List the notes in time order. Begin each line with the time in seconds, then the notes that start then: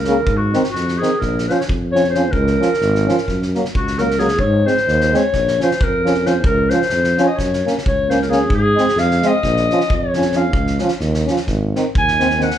Already playing: C#2 A#4
0.05 C#3, snare
0.09 A#3
0.26 G#2, kick
0.37 F#4
0.53 D#3 C4, snare
0.64 snare
0.70 F#4
0.74 F2, snare
0.88 snare
0.98 D#3 C4 G#4
1.03 snare
1.19 A#1 A#4, kick, snare
1.38 snare
1.47 F3 C#4 C5, snare
1.60 C#5, snare
1.69 F2, kick
1.92 F3 C#4 C#5
1.96 snare
2.04 snare
2.10 C5
2.15 F3 C#4, snare
2.32 C#2 A#4, kick
2.47 snare
2.60 F3 C#4, snare
2.74 snare
2.81 G#1, snare
2.95 snare
3.06 F3 C#4, snare
3.18 snare
3.28 F#2, kick, snare
3.42 snare
3.54 F#3 A#3, snare
3.65 snare
3.74 C#2 F#4, kick
3.87 snare
3.98 F#3 A#3 A#4, snare
4.11 snare
4.19 F#3 A#3 G#4, snare
4.28 snare
4.39 G#2 C#5, kick
4.65 G#3 C4 C5, snare
4.77 snare
4.87 D#2, snare
5.01 snare
5.12 G#3 C4 C#5, snare
5.33 A#1, kick, snare
5.48 snare
5.60 F3 C#4 C5, snare
5.71 snare
5.81 F2 A#4, kick
6.04 F3 C#4, snare
6.14 snare
6.25 F3 C#4 C5, snare
6.44 C#2 A#4, kick
6.70 F3 C#4 C5, snare
6.82 snare
6.90 F2, snare
7.04 snare
7.18 F3 C#4, snare
7.24 C#5 D#5
7.35 F#2 C#5, kick
7.39 snare
7.53 snare
7.65 A#3 C#4, snare
7.78 snare
7.86 C#2 C#5, kick
8.09 A#3 C#4 C5, snare
8.22 A#4, snare
8.29 A#3 C#4 G#4, snare
8.49 G#2, kick
8.54 G#4
8.75 G#3 C4, snare
8.88 snare
8.96 F2 F5, snare
9.11 snare
9.22 G#3 C4, snare
9.27 D#5
9.43 A#1, kick, snare
9.57 snare
9.70 F3 C#4, snare
9.80 snare
9.90 F2, kick
9.95 C#5
10.14 F3 C#4, snare
10.22 snare
10.32 F3 C#4, snare
10.36 F5
10.53 C#2, kick
10.67 snare
10.79 F3 C#4, snare
10.88 snare
11.00 D#2, snare
11.14 snare
11.26 F3 C#4, snare
11.36 snare
11.47 G#1, kick, snare
11.75 D#3 C4, snare
11.95 D#2 G#5, kick
12.08 snare
12.19 D#3 C4, snare
12.30 snare
12.38 D#3 C4, snare
12.43 F#5
12.51 snare